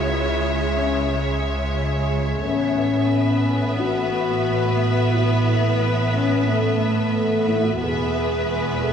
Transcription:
Already playing: double bass section C#2, cello section C#3, viola section G#3, french horn section E4, violin section C#5 E5
0.76 french horn section C#4
1.10 french horn section G#3
2.43 double bass section A1, cello section A2, viola section B3, french horn section C#4, violin section E5
3.10 violin section B4
3.78 french horn section F#4
5.14 french horn section E4
6.13 french horn section C#4
6.47 french horn section A3
7.47 french horn section E4
7.64 french horn section F#4
7.80 double bass section E1, cello section E2, viola section B3, french horn section G#4, violin section B4 E5
8.83 french horn section A4

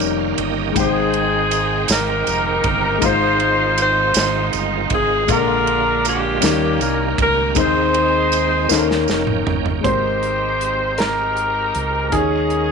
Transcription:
Already playing: grand piano D#3 G3 C#4 D#4 A#4, tonewheel organ D#3 A#3 C#4 G4
0.00 fingered electric bass F1, tonewheel organ G5, ride bell, tambourine
0.19 tonewheel organ F5
0.38 fingered electric bass G1, tonewheel organ D#5, ride bell
0.72 grand piano G#3 D#4, tonewheel organ G#3 C4 G5, kick
0.76 fingered electric bass G#1, grand piano G#2 C5 G5, tonewheel organ D#3, saxophone section C4 D#4 G#4, ride bell, tambourine
1.14 ride bell
1.51 ride bell, tambourine
1.88 fingered electric bass G#1, saxophone section D#4 G4 A#4, snare, ride bell, tambourine
2.27 fingered electric bass F1, ride bell, tambourine
2.64 fingered electric bass G1, kick, ride bell
2.98 grand piano G#2 G#3 D#4, tonewheel organ D#3 G#3 C4 F4, kick, ride bell, tambourine
3.02 fingered electric bass G#1, saxophone section D#4 F4 C5, grand piano F4 C5
3.40 ride bell
3.78 saxophone section F4 C5, ride bell, tambourine
3.82 saxophone section D#4
4.14 fingered electric bass G#1, snare, ride bell, tambourine
4.53 fingered electric bass G1, ride bell, tambourine
4.90 fingered electric bass G#1, saxophone section G#4, kick, ride bell
5.27 fingered electric bass A#1, grand piano A#2 D3 G#3 F4, tonewheel organ D3 G#3 A#3 F4, saxophone section D4 A#4, kick, ride bell, tambourine
5.31 saxophone section F4, grand piano A#4
5.67 ride bell
6.05 saxophone section A#3 C#4 G4, ride bell, tambourine
6.40 fingered electric bass D#2, tonewheel organ D#3 A#3 C#4 G4, grand piano D#3 G3 C#4 D#4 A#4, snare, ride bell, tambourine
6.80 fingered electric bass C2, saxophone section A#4, ride bell, tambourine
7.18 fingered electric bass C#2, saxophone section A#4, kick, ride bell
7.54 fingered electric bass D#2, tonewheel organ D#3 G#3 C4 G#4, grand piano D#3 G#3 C4 D#4 C5, kick, ride bell, tambourine
7.59 saxophone section D#4 G#4 C5
7.94 ride bell
8.32 ride bell, tambourine
8.69 fingered electric bass D#2, tonewheel organ D#3 A#3 C#4 F#4, grand piano D#3 A#3 C#4 D#4 A4, snare, tambourine
8.76 grand piano A#4, tonewheel organ G5
8.91 snare
9.08 fingered electric bass F1, snare, tambourine
9.27 mid tom
9.47 fingered electric bass G1, floor tom
9.66 floor tom
9.81 fingered electric bass G#1, grand piano G#2 G#3 C4 C5, tonewheel organ G#3 C4 G4 A#4, kick
9.85 saxophone section D#4 G4 C5, grand piano G4 A#4, closed hi-hat
10.23 closed hi-hat
10.61 closed hi-hat
10.98 saxophone section D#4 G4 A#4, grand piano A#4, snare, closed hi-hat
11.37 closed hi-hat
11.75 fingered electric bass C#2, closed hi-hat
12.10 fingered electric bass D#2, grand piano D#3 A#3 D#4 G#4, tonewheel organ G#3 C#4 D#4 A#4, kick, closed hi-hat
12.14 saxophone section C#4 G#4, grand piano G4 C#5
12.21 grand piano G#4
12.50 closed hi-hat

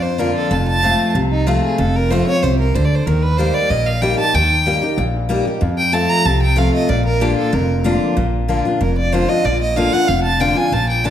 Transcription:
Already playing: upright bass F2, steel-string acoustic guitar F2
0.02 fiddle C5
0.18 steel-string acoustic guitar D3 A#3 D4 F4, fiddle A#4
0.35 fiddle A4
0.51 upright bass F1, steel-string acoustic guitar F2, fiddle A5
0.68 fiddle A5
0.82 steel-string acoustic guitar F3 A3 C4 F4
1.15 upright bass C2, steel-string acoustic guitar C3
1.32 fiddle D#4
1.47 steel-string acoustic guitar F3 A3 C4 F4, fiddle F4
1.63 fiddle G#4
1.78 upright bass F1, steel-string acoustic guitar F2, fiddle A4
1.96 fiddle A#4
2.10 steel-string acoustic guitar F3 A3 C4 F4, fiddle C5
2.27 steel-string acoustic guitar C4 F4, fiddle C#5
2.43 upright bass C2, steel-string acoustic guitar C3, fiddle C5
2.59 fiddle A#4
2.74 upright bass D2, steel-string acoustic guitar D3, fiddle C5
2.85 fiddle D5
2.95 fiddle C5
3.06 upright bass D#2, steel-string acoustic guitar D#3, fiddle A#4
3.22 fiddle B4
3.37 steel-string acoustic guitar G3 A#3 D#4 G4, fiddle C5
3.54 fiddle D5
3.70 upright bass A#1, steel-string acoustic guitar A#2, fiddle D#5
3.86 fiddle F5
4.01 steel-string acoustic guitar G3 A#3 D#4 G4, fiddle G5
4.18 steel-string acoustic guitar D#4 G4, fiddle A5
4.34 upright bass D#2, steel-string acoustic guitar D#3, fiddle G5
4.66 steel-string acoustic guitar G3 A#3 D#4 G4
4.82 steel-string acoustic guitar D#4 G4
4.98 upright bass A#1, steel-string acoustic guitar A#2
5.29 steel-string acoustic guitar G3 A#3 D#4 G4
5.45 steel-string acoustic guitar D#4 G4
5.61 steel-string acoustic guitar F2, upright bass F2
5.78 fiddle G5
5.92 steel-string acoustic guitar F3 A3 C4 F4, fiddle A5
6.09 fiddle A#5
6.25 upright bass C2, steel-string acoustic guitar C3, fiddle A5
6.42 fiddle G5
6.56 steel-string acoustic guitar F3 A3 C4 F4, fiddle F5
6.74 fiddle D#5
6.89 upright bass A#1, steel-string acoustic guitar A#2, fiddle D5
7.05 fiddle A#4
7.20 steel-string acoustic guitar D3 A#3 D4 F4, fiddle G4
7.38 fiddle A4
7.53 upright bass F1, steel-string acoustic guitar F2, fiddle A#4
7.84 steel-string acoustic guitar D3 A#3 D4 F4
8.17 upright bass A#1, steel-string acoustic guitar A#2
8.48 steel-string acoustic guitar D3 A#3 D4 F4
8.65 steel-string acoustic guitar D4 F4
8.81 upright bass F1, steel-string acoustic guitar F2, fiddle A#4
8.97 fiddle D5
9.12 steel-string acoustic guitar D3 A#3 D4 F4, fiddle C5
9.29 steel-string acoustic guitar D4 F4, fiddle D#5
9.44 upright bass A#1, steel-string acoustic guitar A#2, fiddle D5
9.61 fiddle D#5
9.76 steel-string acoustic guitar D3 A#3 D4 F4, fiddle F5
9.92 steel-string acoustic guitar D4 F4, fiddle F#5
10.08 upright bass F1, steel-string acoustic guitar F2, fiddle F5
10.23 fiddle A5
10.39 steel-string acoustic guitar D3 A#3 D4 F4, fiddle G5
10.55 steel-string acoustic guitar D4 F4, fiddle G#5
10.72 upright bass A#1, steel-string acoustic guitar A#2, fiddle A5
10.89 fiddle G5
11.04 steel-string acoustic guitar D3 A#3 D4 F4, fiddle A5

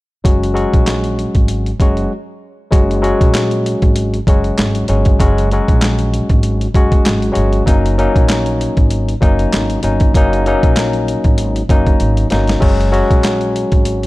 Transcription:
0.24 upright bass F#1, tine electric piano F#3 G#3 C#4 F#4, kick, closed hi-hat
0.43 closed hi-hat
0.54 tine electric piano F#3 G#3 C#4 F#4, closed hi-hat
0.74 upright bass A#1, kick, closed hi-hat
0.86 snare, clap, closed hi-hat
1.04 closed hi-hat
1.19 closed hi-hat
1.35 upright bass G#1, kick, closed hi-hat
1.48 closed hi-hat
1.66 closed hi-hat
1.80 upright bass F#1, tine electric piano F#3 G#3 C#4 F#4, kick, closed hi-hat
1.97 closed hi-hat
2.70 upright bass F#1, tine electric piano F#3 G#3 C#4 F#4, kick, closed hi-hat
2.91 closed hi-hat
3.02 tine electric piano F#3 G#3 C#4 F#4, closed hi-hat
3.21 upright bass A#1, kick, closed hi-hat
3.34 snare, clap, closed hi-hat
3.51 closed hi-hat
3.66 closed hi-hat
3.82 upright bass G#1, kick, closed hi-hat
3.96 closed hi-hat
4.14 closed hi-hat
4.27 upright bass F#1, tine electric piano F#3 G#3 C#4 F#4, kick, closed hi-hat
4.44 closed hi-hat
4.58 upright bass G#1, snare, clap, closed hi-hat
4.75 closed hi-hat
4.88 upright bass G1, tine electric piano F#3 G#3 C#4 F#4, closed hi-hat
5.05 kick, closed hi-hat
5.19 upright bass F#1, tine electric piano F#3 G#3 C#4 F#4, kick, closed hi-hat
5.38 closed hi-hat
5.51 tine electric piano F#3 G#3 C#4 F#4, closed hi-hat
5.68 upright bass A#1, kick, closed hi-hat
5.81 snare, clap, closed hi-hat
5.99 closed hi-hat
6.14 closed hi-hat
6.29 upright bass G#1, kick, closed hi-hat
6.43 closed hi-hat
6.61 closed hi-hat
6.74 upright bass F#1, tine electric piano F#3 G#3 C#4 F#4, kick, closed hi-hat
6.92 kick, closed hi-hat
7.05 upright bass G#1, snare, clap, closed hi-hat
7.22 closed hi-hat
7.32 tine electric piano F#3 G#3 C#4 F#4, closed hi-hat
7.37 upright bass G1
7.53 closed hi-hat
7.66 upright bass F#1, tine electric piano F#3 A#3 C#4 D#4, kick, closed hi-hat
7.86 closed hi-hat
7.98 tine electric piano F#3 A#3 C#4 D#4, closed hi-hat
8.16 upright bass A#1, kick, closed hi-hat
8.29 snare, clap, closed hi-hat
8.46 closed hi-hat
8.61 closed hi-hat
8.77 upright bass G#1, kick, closed hi-hat
8.90 closed hi-hat
9.09 closed hi-hat
9.21 upright bass F#1, tine electric piano F#3 A#3 C#4 D#4, kick, closed hi-hat
9.39 closed hi-hat
9.52 upright bass G#1, snare, clap, closed hi-hat
9.70 closed hi-hat
9.83 upright bass G1, tine electric piano F#3 A#3 C#4 D#4, closed hi-hat
10.00 kick, closed hi-hat
10.14 upright bass F#1, tine electric piano F#3 A#3 C#4 D#4, kick, closed hi-hat
10.33 closed hi-hat
10.46 tine electric piano F#3 A#3 C#4 D#4, closed hi-hat
10.63 upright bass A#1, kick, closed hi-hat
10.76 snare, clap, closed hi-hat
10.93 closed hi-hat
11.08 closed hi-hat
11.24 upright bass G#1, kick, closed hi-hat
11.38 closed hi-hat
11.56 closed hi-hat
11.69 upright bass F#1, tine electric piano F#3 A#3 C#4 D#4, kick, closed hi-hat
11.87 kick, closed hi-hat
12.00 upright bass G#1, closed hi-hat
12.17 closed hi-hat
12.30 upright bass G1, tine electric piano F#3 A#3 C#4 D#4, snare, closed hi-hat
12.47 snare, closed hi-hat
12.60 upright bass F#1, tine electric piano F#3 G#3 C#4 F#4, kick, crash
12.81 closed hi-hat
12.91 tine electric piano F#3 G#3 C#4 F#4, closed hi-hat
13.11 upright bass A#1, kick, closed hi-hat
13.23 snare, clap, closed hi-hat
13.41 closed hi-hat
13.56 closed hi-hat
13.72 upright bass G#1, kick, closed hi-hat
13.85 closed hi-hat
14.03 closed hi-hat

